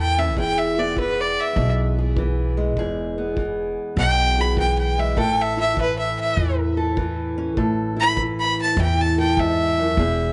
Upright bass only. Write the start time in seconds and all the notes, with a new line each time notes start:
Already playing: E2
0.37 E1
1.56 B1
2.77 E1
3.96 B1
5.17 A1
6.37 E2
7.57 A1
8.77 E2
9.97 E1